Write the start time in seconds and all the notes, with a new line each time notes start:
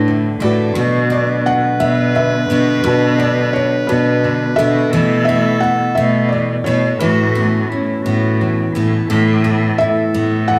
Already playing: A2 E3 A3 D4 E4 A4 B4
0.08 D3
0.40 A2 A3 D4 F#4 A4 B4 D5
0.75 B2 F#3 F#4 B4
1.10 B3 D4 D5
1.46 D4 F#5
1.80 B2 B3 E5
2.15 D3 B4 E5
2.50 B2 B3 D4 F#4
2.84 B2 F#3 D4 F#4 B4
3.18 B3 D4 D5
3.53 D4 C#5
3.87 B2 B3 D4 F#4 B4
4.24 D3
4.56 B2 B3 D4 F#4 A4 B4 E5
4.91 B2 E3 A3 B3 E4 A4
5.25 A3 E5
5.29 E4
5.60 B3 F#5
5.95 B2 A3 B3 E5
6.29 E3 D5
6.64 B2 A3 B3 E4 A4 C#5
6.99 A2 E3 E4 F#4 A4 B4
7.35 B3 C#4
7.69 C#4 E4
8.02 A2 B3 F#4
8.41 E3
8.74 A2 B3 C#4 E4 A4
9.09 A2 E3 B3 E4 A4
9.44 B3 E4
9.78 E4 E5
10.14 A2 B3
10.48 E3 F#5